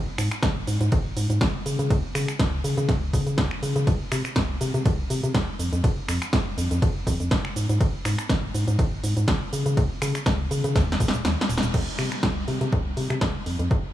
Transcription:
0.18 fm bass G#2, finger snap, open hi-hat, shaker
0.31 finger snap, closed hi-hat, shaker
0.43 fm bass G#1, kick, snare, closed hi-hat, ride, shaker
0.67 fm bass G#2, open hi-hat, shaker
0.81 fm bass G#2, closed hi-hat, shaker
0.92 fm bass G#1, kick, closed hi-hat, ride, shaker
1.17 fm bass G#2, open hi-hat, shaker
1.30 fm bass G#2, closed hi-hat, shaker
1.41 fm bass G#1, kick, snare, closed hi-hat, ride, shaker
1.66 fm bass C#3, open hi-hat, shaker
1.79 fm bass C#3, closed hi-hat, shaker
1.90 fm bass C#2, kick, closed hi-hat, ride, shaker
2.15 fm bass C#3, finger snap, open hi-hat, shaker
2.28 finger snap, closed hi-hat, shaker
2.39 fm bass C#2, kick, snare, closed hi-hat, ride, shaker
2.64 fm bass C#3, open hi-hat, shaker
2.77 fm bass C#3, closed hi-hat, shaker
2.89 fm bass C#2, kick, snare, closed hi-hat, ride, shaker
3.13 fm bass C#3, kick, open hi-hat, shaker
3.27 fm bass C#3, closed hi-hat, shaker
3.38 fm bass C#2, kick, snare, closed hi-hat, ride, shaker
3.51 finger snap
3.63 fm bass C#3, open hi-hat, shaker
3.76 fm bass C#3, closed hi-hat, shaker
3.87 fm bass C2, kick, closed hi-hat, ride, shaker
4.12 fm bass C3, finger snap, open hi-hat, shaker
4.25 finger snap, closed hi-hat, shaker
4.36 fm bass C2, kick, snare, closed hi-hat, ride, shaker
4.61 fm bass C3, open hi-hat, shaker
4.74 fm bass C3, closed hi-hat, shaker
4.86 fm bass C2, kick, closed hi-hat, ride, shaker
5.10 fm bass C3, open hi-hat, shaker
5.23 fm bass C3, closed hi-hat, shaker
5.35 fm bass C2, kick, snare, closed hi-hat, ride, shaker
5.59 fm bass F2, open hi-hat, shaker
5.73 fm bass F2, closed hi-hat, shaker
5.84 fm bass F1, kick, closed hi-hat, ride, shaker
6.09 fm bass F2, finger snap, open hi-hat, shaker
6.22 finger snap, closed hi-hat, shaker
6.33 fm bass F1, kick, snare, closed hi-hat, ride, shaker
6.58 fm bass F2, open hi-hat, shaker
6.71 fm bass F2, closed hi-hat, shaker
6.82 fm bass F1, kick, closed hi-hat, ride, shaker
7.07 fm bass F2, kick, open hi-hat, shaker
7.20 fm bass F2, closed hi-hat, shaker
7.31 fm bass F1, kick, snare, closed hi-hat, ride, shaker
7.45 finger snap
7.56 fm bass G#2, open hi-hat, shaker
7.69 fm bass G#2, closed hi-hat, shaker
7.81 fm bass G#1, kick, closed hi-hat, ride, shaker
8.05 fm bass G#2, finger snap, open hi-hat, shaker
8.18 finger snap, closed hi-hat, shaker
8.29 fm bass G#1, kick, snare, closed hi-hat, ride, shaker
8.54 fm bass G#2, open hi-hat, shaker
8.68 fm bass G#2, closed hi-hat, shaker
8.79 fm bass G#1, kick, closed hi-hat, ride, shaker
9.04 fm bass G#2, open hi-hat, shaker
9.17 fm bass G#2, closed hi-hat, shaker
9.28 fm bass G#1, kick, snare, closed hi-hat, ride, shaker
9.53 fm bass C#3, open hi-hat, shaker
9.66 fm bass C#3, closed hi-hat, shaker
9.77 fm bass C#2, kick, closed hi-hat, ride, shaker
10.02 fm bass C#3, finger snap, open hi-hat, shaker
10.15 finger snap, closed hi-hat, shaker
10.26 fm bass C#2, kick, snare, closed hi-hat, ride, shaker
10.51 fm bass C#3, open hi-hat, shaker
10.64 fm bass C#3, closed hi-hat, shaker
10.76 fm bass D#2, kick, snare, closed hi-hat, ride, shaker
10.92 snare
11.00 fm bass D#1, kick, open hi-hat, shaker
11.08 snare
11.13 fm bass D#1, closed hi-hat, shaker
11.25 fm bass D#2, snare, closed hi-hat, ride, shaker
11.41 snare
11.49 fm bass D#1, open hi-hat, shaker
11.58 snare
11.63 fm bass D#1, closed hi-hat, shaker
11.74 fm bass C2, kick, closed hi-hat, crash
11.99 fm bass C3, finger snap, open hi-hat
12.12 finger snap, closed hi-hat
12.23 fm bass C2, kick, snare, closed hi-hat
12.48 fm bass C3, open hi-hat
12.61 fm bass C3, closed hi-hat
12.72 fm bass C2, kick, closed hi-hat
12.97 fm bass C3, open hi-hat
13.10 fm bass C3, finger snap, closed hi-hat
13.21 fm bass C2, kick, snare, closed hi-hat
13.46 fm bass F2, open hi-hat
13.59 fm bass F2, closed hi-hat
13.71 fm bass F1, kick, closed hi-hat

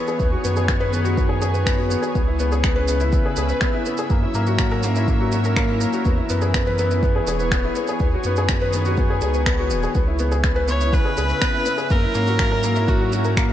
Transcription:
Already playing: analog synth pad E3 B3 G#4 C#5, felt piano B3 E4 G#4 B4
0.07 felt piano G#4, shaker
0.19 sub bass D#2, analog synth pad D#3, felt piano B3, kick, shaker
0.32 felt piano F#4
0.44 sub bass F#2, felt piano B3, shaker
0.56 felt piano G#4, shaker
0.68 felt piano B3, finger snap, kick, shaker
0.80 felt piano B4
0.93 felt piano B3, shaker
1.04 felt piano F#4, shaker
1.17 felt piano B3, kick, shaker
1.29 felt piano G#4
1.42 felt piano G#4, shaker
1.54 felt piano B4, shaker
1.65 felt piano B3, finger snap, kick, shaker
1.77 felt piano F#4
1.90 felt piano B3, shaker
2.02 felt piano G#4, shaker
2.15 sub bass C#2, analog synth pad C#3, felt piano B3, kick, shaker
2.27 analog synth pad C#4, felt piano E4
2.39 felt piano B3, shaker
2.52 felt piano G#4, shaker
2.62 felt piano B3, analog synth pad E5, finger snap, kick, shaker
2.76 felt piano B4
2.88 felt piano B3, shaker
3.00 felt piano E4, shaker
3.04 analog synth pad B4
3.12 felt piano B3, kick, shaker
3.26 felt piano G#4
3.36 sub bass C#2, felt piano G#4, shaker
3.49 felt piano B4, shaker
3.61 felt piano B3, finger snap, kick, shaker
3.75 felt piano E4
3.86 felt piano B3, shaker
3.97 felt piano G#4, shaker
4.10 sub bass F#2, analog synth pad F#3, felt piano A#3, kick, shaker
4.23 felt piano E4
4.34 sub bass G#2, felt piano A#3, shaker
4.47 felt piano F#4, shaker
4.59 felt piano A#3, finger snap, kick, shaker
4.71 felt piano A#4
4.83 felt piano A#3, shaker
4.96 felt piano E4, analog synth pad A#4, shaker
5.08 felt piano A#3, kick, shaker
5.20 felt piano F#4
5.32 felt piano F#4, shaker
5.44 felt piano A#4, shaker
5.56 felt piano A#3, finger snap, kick, shaker
5.69 felt piano E4
5.81 felt piano A#3, shaker
5.93 felt piano F#4, shaker
6.05 sub bass E2, analog synth pad E3, felt piano B3, kick, shaker
6.18 analog synth pad B3, felt piano E4
6.29 sub bass F#2, felt piano B3, shaker
6.41 felt piano G#4, shaker
6.54 felt piano B3, finger snap, kick, shaker
6.67 felt piano B4
6.78 felt piano B3, shaker
6.91 felt piano E4, analog synth pad G#4 C#5, shaker
7.03 felt piano B3, kick, shaker
7.16 felt piano G#4
7.26 sub bass E1, felt piano G#4, shaker
7.39 felt piano B4, shaker
7.51 felt piano B3, finger snap, kick, shaker
7.65 felt piano E4
7.75 felt piano B3, shaker
7.87 felt piano G#4, shaker
7.99 sub bass D#2, analog synth pad D#3, felt piano B3, kick, shaker
8.14 felt piano F#4
8.24 sub bass F#2, felt piano B3, shaker
8.36 felt piano G#4, shaker
8.49 felt piano B3, finger snap, kick, shaker
8.62 felt piano B4
8.73 felt piano B3, shaker
8.85 felt piano F#4, shaker
8.97 felt piano B3, kick, shaker
9.10 felt piano G#4
9.21 sub bass C#2, felt piano G#4, shaker
9.34 felt piano B4, shaker
9.46 felt piano B3, finger snap, kick, shaker
9.59 felt piano F#4
9.70 sub bass D#1, felt piano B3, shaker
9.83 felt piano G#4, shaker
9.95 sub bass C#2, analog synth pad C#3, felt piano B3, kick, shaker
10.08 felt piano E4
10.14 analog synth pad E5
10.19 felt piano B3, shaker
10.32 felt piano G#4, shaker
10.39 analog synth pad C#4
10.44 felt piano B3, finger snap, kick, shaker
10.56 felt piano B4
10.68 felt piano B3, viola C#5, shaker
10.81 felt piano E4, analog synth pad B4, shaker
10.93 felt piano B3, viola B4, kick, shaker
11.05 felt piano G#4
11.17 sub bass C#2, felt piano G#4, shaker
11.29 felt piano B4, shaker
11.41 felt piano B3, finger snap, kick, shaker
11.54 felt piano E4
11.66 felt piano B3, shaker
11.78 felt piano G#4, shaker
11.90 sub bass F#2, analog synth pad F#3, felt piano A#3, viola A#4, kick, shaker
12.02 felt piano E4
12.08 analog synth pad A#4
12.15 sub bass G#2, felt piano A#3, shaker
12.27 felt piano F#4, shaker
12.39 felt piano A#3, finger snap, kick, shaker
12.52 felt piano A#4
12.63 felt piano A#3, shaker
12.76 felt piano E4, shaker
12.88 felt piano A#3, viola F#4, kick, shaker
13.01 felt piano F#4
13.12 felt piano F#4, shaker
13.25 felt piano A#4, shaker
13.37 felt piano A#3, finger snap, kick, shaker
13.50 felt piano E4

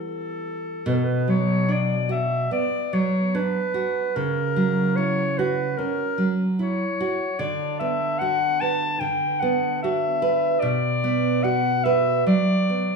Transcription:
Already playing: nylon-string guitar E3 G3 B3 E4, clarinet A4
0.86 nylon-string guitar B2, clarinet B4
0.94 clarinet A4
1.04 clarinet B4
1.28 nylon-string guitar F#3, clarinet C#5
1.69 nylon-string guitar D4, clarinet D5
2.09 nylon-string guitar F#4, clarinet E5
2.51 nylon-string guitar B3, clarinet D5
2.93 nylon-string guitar F#3, clarinet C#5
3.35 nylon-string guitar D4, clarinet B4
3.74 nylon-string guitar F#4
4.15 nylon-string guitar C#3, clarinet A#4
4.56 nylon-string guitar F#3
4.96 nylon-string guitar E4, clarinet C#5
5.38 nylon-string guitar F#4, clarinet B4
5.77 nylon-string guitar C#4, clarinet A#4
6.18 nylon-string guitar F#3
6.59 nylon-string guitar E4, clarinet C#5
7.00 nylon-string guitar F#4
7.39 nylon-string guitar D3, clarinet D5
7.79 nylon-string guitar B3, clarinet E5
8.18 nylon-string guitar F#4, clarinet F#5
8.61 nylon-string guitar B4, clarinet A5
9.00 nylon-string guitar D3, clarinet G5
9.40 nylon-string guitar B3, clarinet F#5
9.82 nylon-string guitar F#4, clarinet E5
10.22 nylon-string guitar B4
10.60 nylon-string guitar B2, clarinet D5
11.04 nylon-string guitar B3
11.43 nylon-string guitar F#4, clarinet F#5
11.84 nylon-string guitar B4, clarinet E5
12.27 nylon-string guitar F#3, clarinet D5
12.69 nylon-string guitar B3

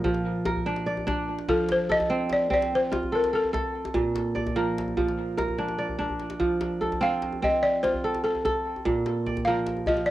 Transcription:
Already playing: kora A#2 A#4 D5
0.04 kora F3, djembe bass
0.15 djembe slap
0.46 kora A#4, djembe slap, djembe tone
0.56 djembe bass
0.66 kora D4
0.77 djembe slap
0.87 kora D5
0.97 djembe tone
1.07 kora D4, djembe slap, djembe bass
1.28 djembe slap
1.39 djembe slap
1.48 kora F3, balafon A4, djembe slap, djembe bass
1.69 balafon C5, djembe slap
1.89 kora A4, balafon D#5, djembe tone
2.00 djembe slap, djembe bass
2.10 kora C4
2.29 balafon D5, djembe slap
2.50 kora C4, balafon D5, djembe bass
2.62 djembe slap
2.75 balafon C5
2.91 kora F4, djembe slap, djembe tone
3.03 djembe bass
3.12 kora A4, balafon A#4
3.24 djembe slap
3.33 kora A4, balafon A4
3.43 djembe tone
3.53 kora A4, djembe slap, djembe bass
3.75 djembe slap
3.85 djembe slap, djembe tone
3.94 kora A#2, djembe bass
4.16 djembe slap
4.35 kora D5, djembe tone
4.47 djembe slap, djembe bass
4.56 kora F3 A#4
4.78 djembe slap
4.88 djembe tone
4.97 kora F3, djembe bass
5.09 djembe slap
5.29 djembe slap
5.38 kora A#4, djembe slap, djembe tone
5.49 djembe bass
5.58 kora D4, djembe slap
5.68 djembe slap
5.78 kora D5, djembe slap
5.89 djembe bass
5.98 kora D4, djembe bass
6.09 djembe bass
6.19 djembe slap
6.30 djembe slap
6.39 kora F3, djembe slap, djembe bass
6.61 djembe slap
6.81 kora A4, djembe tone
6.92 djembe slap, djembe bass
7.01 kora C4 F4, balafon F5
7.22 djembe slap
7.32 djembe tone
7.42 kora C4, balafon D#5, djembe bass
7.63 balafon D5
7.83 kora F4, balafon C5, djembe slap
7.94 djembe bass
8.04 kora A4
8.14 djembe slap
8.24 balafon A4, kora A4
8.35 djembe tone
8.45 kora A4, djembe slap, djembe bass
8.65 djembe slap
8.76 djembe tone
8.85 kora A#2, djembe slap, djembe bass
9.06 djembe slap
9.26 kora D5, djembe tone
9.37 djembe slap, djembe bass
9.45 kora F3 A#4, balafon F5
9.67 djembe slap
9.77 djembe tone
9.86 kora F3, balafon D#5, djembe bass
9.97 djembe slap
10.06 balafon D5

